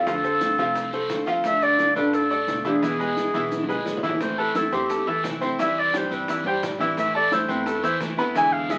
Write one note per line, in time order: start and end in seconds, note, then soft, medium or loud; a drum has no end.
0.00 0.52 F2 medium
0.00 1.24 A4 loud
0.06 0.39 D3 medium
0.06 0.21 F3 medium
0.06 0.41 A3 medium
0.06 0.41 C4 medium
0.06 0.21 F4 medium
0.06 0.41 F4 medium
0.06 0.21 F5 medium
0.06 high bongo medium
0.06 long guiro medium
0.06 maracas medium
0.24 0.52 A3 medium
0.24 0.52 A4 medium
0.24 0.52 C5 medium
0.24 maracas soft
0.41 0.57 D3 medium
0.41 0.58 A3 medium
0.41 0.58 C4 medium
0.41 0.57 F4 medium
0.41 high bongo medium
0.41 short guiro medium
0.41 maracas medium
0.58 1.06 C2 loud
0.58 0.87 F3 medium
0.58 0.92 A3 medium
0.58 0.92 C4 medium
0.58 0.92 F4 medium
0.58 0.87 F4 medium
0.58 0.87 F5 medium
0.58 high bongo soft
0.58 short guiro medium
0.58 maracas soft
0.75 high bongo medium
0.75 long guiro medium
0.75 maracas medium
0.92 1.21 A3 medium
0.92 1.21 A4 medium
0.92 1.21 C5 medium
0.92 muted steel-string acoustic guitar stroke medium
0.92 high bongo soft
0.92 maracas soft
1.10 1.90 D2 medium
1.10 1.26 D3 soft
1.10 1.27 A3 soft
1.10 1.26 C4 soft
1.10 1.25 F4 medium
1.10 high bongo medium
1.10 low bongo medium
1.10 short guiro medium
1.10 maracas medium
1.26 1.55 F3 medium
1.26 1.43 A3 medium
1.26 1.44 C4 medium
1.26 1.43 F4 medium
1.26 1.56 F4 medium
1.26 1.56 F5 medium
1.26 high bongo soft
1.26 short guiro medium
1.26 maracas soft
1.44 1.77 D3 medium
1.44 1.77 A3 medium
1.44 1.78 D4 medium
1.44 1.79 F4 medium
1.44 1.64 E5 loud
1.44 high bongo medium
1.44 long guiro medium
1.44 maracas medium
1.62 1.90 A3 medium
1.62 1.90 A4 medium
1.62 1.91 D5 medium
1.62 1.95 D5 loud
1.62 maracas soft
1.78 1.95 D3 medium
1.78 1.95 A3 medium
1.78 1.95 D4 medium
1.78 1.94 F4 medium
1.78 high bongo medium
1.78 short guiro medium
1.78 maracas medium
1.95 2.44 A1 loud
1.95 2.24 A3 medium
1.95 2.30 A3 soft
1.95 2.30 D4 medium
1.95 2.30 F4 medium
1.95 2.25 A4 medium
1.95 2.16 B4 medium
1.95 2.25 D5 medium
1.95 short guiro medium
1.95 maracas soft
2.13 2.65 A4 medium
2.13 high bongo medium
2.13 long guiro medium
2.13 maracas medium
2.30 2.59 A3 medium
2.30 2.59 A4 medium
2.30 2.59 D5 medium
2.30 muted steel-string acoustic guitar stroke medium
2.30 maracas soft
2.47 3.28 E1 medium
2.47 2.64 D3 medium
2.47 2.65 A3 medium
2.47 2.64 D4 medium
2.47 2.63 F4 soft
2.47 high bongo medium
2.47 low bongo medium
2.47 short guiro medium
2.47 maracas medium
2.64 2.79 E3 medium
2.64 2.82 A3 medium
2.64 2.82 D4 medium
2.64 2.79 E4 medium
2.64 2.81 F4 medium
2.64 3.83 G#4 medium
2.64 2.80 E5 medium
2.64 short guiro medium
2.64 maracas soft
2.82 3.16 B2 medium
2.82 3.15 E3 medium
2.82 2.97 E3 medium
2.82 3.16 G#3 medium
2.82 3.16 B3 medium
2.82 2.97 E4 medium
2.82 3.17 E4 medium
2.82 2.97 E5 medium
2.82 high bongo medium
2.82 long guiro medium
2.82 maracas medium
2.99 3.28 G#3 medium
2.99 3.28 G#4 medium
2.99 3.28 B4 medium
2.99 maracas soft
3.16 3.33 E3 medium
3.16 3.34 G#3 medium
3.16 3.33 B3 medium
3.16 3.32 E4 medium
3.16 high bongo medium
3.16 short guiro medium
3.16 maracas medium
3.33 3.83 B1 medium
3.33 3.63 E3 medium
3.33 3.68 E3 medium
3.33 3.69 G#3 medium
3.33 3.68 B3 medium
3.33 3.68 E4 medium
3.33 3.63 E4 medium
3.33 3.63 E5 medium
3.33 high bongo soft
3.33 short guiro medium
3.33 maracas soft
3.52 high bongo medium
3.52 long guiro medium
3.52 maracas medium
3.63 high bongo medium
3.69 3.97 G#3 medium
3.69 3.97 G#4 medium
3.69 3.97 B4 medium
3.69 muted steel-string acoustic guitar stroke medium
3.69 maracas soft
3.75 low bongo medium
3.86 4.67 A1 medium
3.86 4.03 E3 soft
3.86 4.03 G#3 soft
3.86 4.03 B3 medium
3.86 4.02 E4 medium
3.86 low bongo loud
3.86 short guiro medium
3.86 maracas medium
3.97 low bongo medium
4.03 4.17 E3 medium
4.03 4.19 E3 medium
4.03 4.21 G#3 medium
4.03 4.20 B3 medium
4.03 4.20 E4 medium
4.03 4.18 E4 medium
4.03 4.18 E5 medium
4.03 short guiro medium
4.03 maracas soft
4.09 low bongo loud
4.20 4.53 E3 medium
4.20 4.54 A3 medium
4.20 4.55 C4 medium
4.20 4.55 E4 medium
4.20 4.37 C5 medium
4.20 high bongo medium
4.20 long guiro medium
4.20 maracas medium
4.38 4.52 A3 medium
4.38 4.52 A4 medium
4.38 4.58 B4 medium
4.38 4.52 A5 medium
4.54 4.72 E3 medium
4.54 4.72 A3 medium
4.54 4.72 C4 medium
4.54 4.70 E4 medium
4.54 4.72 E4 medium
4.54 4.75 A4 medium
4.54 4.70 E5 medium
4.54 4.70 E6 medium
4.54 high bongo medium
4.54 short guiro medium
4.54 maracas medium
4.72 5.21 E2 medium
4.72 5.06 A3 medium
4.72 4.87 C4 medium
4.72 5.07 C4 medium
4.72 5.07 E4 medium
4.72 5.08 G4 medium
4.72 4.87 C5 medium
4.72 4.87 C6 medium
4.72 short guiro medium
4.72 maracas soft
4.90 5.04 A3 medium
4.90 5.04 A4 medium
4.90 5.04 A5 medium
4.90 high bongo medium
4.90 long guiro medium
4.90 maracas medium
5.07 5.35 E3 medium
5.07 5.36 E4 medium
5.07 5.24 A4 medium
5.07 5.36 E5 medium
5.07 muted steel-string acoustic guitar stroke medium
5.24 6.05 C2 medium
5.24 5.41 E3 soft
5.24 5.41 A3 medium
5.24 5.41 C4 soft
5.24 5.40 E4 medium
5.24 high bongo medium
5.24 low bongo medium
5.24 short guiro medium
5.24 maracas medium
5.41 5.59 A3 medium
5.41 5.56 C4 medium
5.41 5.59 C4 medium
5.41 5.58 E4 medium
5.41 5.56 C5 medium
5.41 5.56 C6 medium
5.41 short guiro medium
5.41 maracas soft
5.58 5.93 C3 medium
5.58 5.87 E3 medium
5.58 5.92 E3 medium
5.58 5.93 G3 medium
5.58 5.93 C4 medium
5.58 5.88 E4 medium
5.58 5.94 E4 medium
5.58 5.88 E5 medium
5.58 5.81 E5 medium
5.58 high bongo medium
5.58 long guiro medium
5.58 maracas medium
5.79 5.98 D5 medium
5.93 6.10 E3 medium
5.93 6.22 G3 medium
5.93 6.10 G3 medium
5.93 6.09 C4 medium
5.93 6.08 E4 medium
5.93 6.22 G4 medium
5.93 6.22 G5 medium
5.93 high bongo medium
5.93 short guiro medium
5.93 maracas medium
5.97 6.14 C5 medium
6.10 6.60 G2 loud
6.10 6.43 E3 medium
6.10 6.43 G3 medium
6.10 6.44 C4 medium
6.10 6.44 E4 medium
6.10 6.46 B4 medium
6.10 high bongo soft
6.10 short guiro medium
6.10 maracas soft
6.28 6.43 E3 medium
6.28 6.43 E4 medium
6.28 6.43 E5 medium
6.28 high bongo medium
6.28 long guiro medium
6.28 maracas medium
6.44 6.74 G3 medium
6.44 6.74 G4 medium
6.44 6.62 C5 medium
6.44 6.75 G5 medium
6.44 muted steel-string acoustic guitar stroke medium
6.44 high bongo soft
6.62 7.44 A2 medium
6.62 6.79 E3 medium
6.62 6.79 G3 medium
6.62 6.79 C4 medium
6.62 6.77 E4 medium
6.62 high bongo medium
6.62 low bongo medium
6.62 short guiro medium
6.62 maracas medium
6.79 7.09 E3 medium
6.79 6.96 E3 medium
6.79 6.97 G3 medium
6.79 6.97 C4 medium
6.79 6.96 E4 medium
6.79 7.09 E4 medium
6.79 7.09 E5 medium
6.79 high bongo soft
6.79 short guiro medium
6.79 maracas soft
6.97 7.29 E3 medium
6.97 7.30 A3 medium
6.97 7.31 C4 medium
6.97 7.31 E4 medium
6.97 7.14 E5 medium
6.97 high bongo medium
6.97 long guiro medium
6.97 maracas medium
7.14 7.29 A3 medium
7.14 7.29 A4 medium
7.14 7.35 D5 medium
7.14 7.29 A5 medium
7.31 7.48 E3 medium
7.31 7.48 A3 medium
7.31 7.49 C4 medium
7.31 7.46 E4 medium
7.31 7.47 E4 medium
7.31 7.51 C5 medium
7.31 7.46 E5 medium
7.31 7.46 E6 medium
7.31 high bongo medium
7.31 short guiro medium
7.31 maracas medium
7.48 7.97 E2 loud
7.48 7.82 A3 medium
7.48 7.63 C4 medium
7.48 7.82 C4 medium
7.48 7.82 E4 medium
7.48 7.84 B4 medium
7.48 7.63 C5 medium
7.48 7.63 C6 medium
7.48 short guiro medium
7.48 maracas soft
7.66 7.80 A3 medium
7.66 7.81 A4 medium
7.66 7.81 A5 medium
7.66 high bongo medium
7.66 long guiro medium
7.66 maracas medium
7.83 8.12 E3 medium
7.83 8.12 E4 medium
7.83 8.00 C5 medium
7.83 8.12 E5 medium
7.83 muted steel-string acoustic guitar stroke medium
7.83 maracas medium
8.00 8.78 E2 medium
8.00 8.17 E3 medium
8.00 8.18 A3 medium
8.00 8.17 C4 medium
8.00 8.16 E4 medium
8.00 high bongo medium
8.00 low bongo medium
8.00 short guiro medium
8.00 maracas medium
8.17 8.35 A3 medium
8.17 8.32 B3 medium
8.17 8.35 C4 medium
8.17 8.34 E4 medium
8.17 8.32 B4 medium
8.17 8.33 B5 medium
8.17 short guiro medium
8.17 maracas soft
8.34 8.69 B2 medium
8.34 8.68 D3 medium
8.34 8.64 E3 medium
8.34 8.69 G#3 medium
8.34 8.70 B3 medium
8.34 8.64 E4 medium
8.34 8.70 E4 medium
8.34 8.64 E5 medium
8.34 8.54 G#5 loud
8.34 high bongo medium
8.34 long guiro medium
8.34 maracas medium
8.53 8.72 F5 medium
8.69 8.78 D3 medium
8.69 8.78 G#3 medium
8.69 8.78 B3 medium
8.69 8.78 E4 medium
8.69 8.78 G#4 medium
8.69 8.78 E5 medium
8.69 8.78 G#5 medium
8.69 high bongo medium
8.69 short guiro medium
8.69 maracas medium